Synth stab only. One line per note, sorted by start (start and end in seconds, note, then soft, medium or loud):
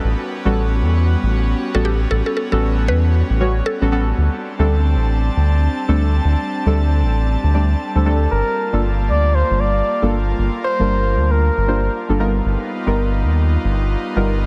0.45 0.53 G3 medium
0.45 0.53 B3 medium
0.45 0.53 C#4 medium
0.45 0.53 F#4 medium
0.45 0.53 A4 loud
1.74 1.88 G3 medium
1.74 1.88 B3 medium
1.74 1.88 C#4 medium
1.74 1.88 F#4 medium
1.74 1.88 A4 loud
2.52 3.38 G3 medium
2.52 3.38 B3 medium
2.52 3.38 C#4 medium
2.52 3.38 F#4 medium
2.52 3.38 A4 medium
3.40 3.52 G3 medium
3.40 3.52 B3 medium
3.40 3.52 C#4 medium
3.40 3.52 F#4 medium
3.40 3.52 C#5 medium
3.81 3.90 G3 medium
3.81 3.90 B3 medium
3.81 3.90 C#4 medium
3.81 3.90 F#4 medium
3.81 3.91 A4 medium
3.92 4.03 G3 loud
3.92 4.03 B3 medium
3.92 4.03 C#4 medium
3.92 4.03 F#4 medium
3.92 4.04 A4 loud
4.59 4.67 G3 medium
4.59 4.67 A3 medium
4.59 4.67 C4 medium
4.59 4.67 D4 medium
4.59 4.67 A4 loud
5.88 6.02 G3 medium
5.88 6.02 A3 medium
5.88 6.02 C4 medium
5.88 6.02 D4 medium
5.88 6.02 A4 loud
6.65 7.52 G3 medium
6.65 7.52 A3 medium
6.65 7.52 C4 medium
6.65 7.52 D4 medium
6.65 7.52 A4 medium
7.54 7.65 G3 medium
7.54 7.65 A3 medium
7.54 7.65 C4 medium
7.54 7.66 D4 medium
7.54 7.66 D5 medium
7.95 8.04 G3 medium
7.95 8.04 A3 medium
7.95 8.04 C4 medium
7.95 8.04 D4 medium
7.95 8.04 A4 medium
8.05 8.17 G3 loud
8.05 8.17 A3 medium
8.05 8.17 C4 medium
8.05 8.17 D4 medium
8.05 8.17 A4 loud
8.73 8.80 G3 medium
8.73 8.81 A#3 medium
8.73 8.81 D4 medium
8.73 8.81 F4 medium
8.73 8.81 A4 loud
10.02 10.15 G3 medium
10.02 10.15 A#3 medium
10.02 10.16 D4 medium
10.02 10.16 F4 medium
10.02 10.16 A4 loud
10.79 11.65 G3 medium
10.79 11.65 A#3 medium
10.79 11.66 D4 medium
10.79 11.66 F4 medium
10.79 11.66 A#4 medium
11.67 11.79 G3 medium
11.67 11.79 A#3 medium
11.67 11.79 D4 medium
11.67 11.79 F4 medium
11.67 11.79 C5 medium
12.09 12.18 G3 medium
12.09 12.18 A#3 medium
12.09 12.18 D4 medium
12.09 12.18 F4 medium
12.09 12.18 A4 medium
12.19 12.31 G3 loud
12.19 12.31 B3 medium
12.19 12.31 D#4 medium
12.19 12.31 F4 medium
12.19 12.31 A#4 loud
12.86 12.94 G3 medium
12.86 12.94 B3 medium
12.86 12.94 D#4 medium
12.86 12.94 F4 medium
12.86 12.95 A#4 medium
14.16 14.29 G3 medium
14.16 14.29 B3 medium
14.16 14.29 D#4 medium
14.16 14.29 F4 medium
14.16 14.29 A#4 loud